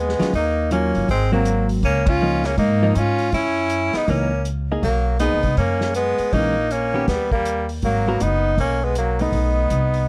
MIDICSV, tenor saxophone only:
0, 0, Header, 1, 2, 480
1, 0, Start_track
1, 0, Key_signature, 5, "minor"
1, 0, Tempo, 374766
1, 437, Time_signature, 4, 2, 24, 8
1, 12916, End_track
2, 0, Start_track
2, 0, Title_t, "Tenor saxophone"
2, 0, Program_c, 0, 66
2, 0, Note_on_c, 0, 59, 80
2, 442, Note_off_c, 0, 59, 0
2, 447, Note_on_c, 0, 63, 79
2, 888, Note_off_c, 0, 63, 0
2, 927, Note_on_c, 0, 61, 77
2, 1368, Note_off_c, 0, 61, 0
2, 1415, Note_on_c, 0, 60, 82
2, 1688, Note_off_c, 0, 60, 0
2, 1701, Note_on_c, 0, 58, 78
2, 2145, Note_off_c, 0, 58, 0
2, 2367, Note_on_c, 0, 61, 92
2, 2674, Note_on_c, 0, 65, 102
2, 2693, Note_off_c, 0, 61, 0
2, 3145, Note_on_c, 0, 61, 90
2, 3164, Note_off_c, 0, 65, 0
2, 3302, Note_off_c, 0, 61, 0
2, 3309, Note_on_c, 0, 63, 83
2, 3823, Note_on_c, 0, 65, 94
2, 3842, Note_off_c, 0, 63, 0
2, 4272, Note_off_c, 0, 65, 0
2, 4280, Note_on_c, 0, 64, 92
2, 5088, Note_on_c, 0, 63, 85
2, 5108, Note_off_c, 0, 64, 0
2, 5253, Note_on_c, 0, 61, 74
2, 5272, Note_off_c, 0, 63, 0
2, 5721, Note_off_c, 0, 61, 0
2, 6199, Note_on_c, 0, 58, 81
2, 6641, Note_off_c, 0, 58, 0
2, 6659, Note_on_c, 0, 63, 92
2, 7110, Note_off_c, 0, 63, 0
2, 7144, Note_on_c, 0, 61, 81
2, 7593, Note_off_c, 0, 61, 0
2, 7627, Note_on_c, 0, 59, 83
2, 8110, Note_on_c, 0, 63, 90
2, 8129, Note_off_c, 0, 59, 0
2, 8602, Note_on_c, 0, 61, 82
2, 8622, Note_off_c, 0, 63, 0
2, 9069, Note_off_c, 0, 61, 0
2, 9077, Note_on_c, 0, 59, 75
2, 9357, Note_off_c, 0, 59, 0
2, 9376, Note_on_c, 0, 58, 80
2, 9823, Note_off_c, 0, 58, 0
2, 10052, Note_on_c, 0, 58, 81
2, 10531, Note_on_c, 0, 63, 88
2, 10550, Note_off_c, 0, 58, 0
2, 11003, Note_off_c, 0, 63, 0
2, 11019, Note_on_c, 0, 61, 77
2, 11330, Note_on_c, 0, 59, 73
2, 11349, Note_off_c, 0, 61, 0
2, 11491, Note_off_c, 0, 59, 0
2, 11501, Note_on_c, 0, 58, 74
2, 11805, Note_on_c, 0, 63, 78
2, 11825, Note_off_c, 0, 58, 0
2, 12916, Note_off_c, 0, 63, 0
2, 12916, End_track
0, 0, End_of_file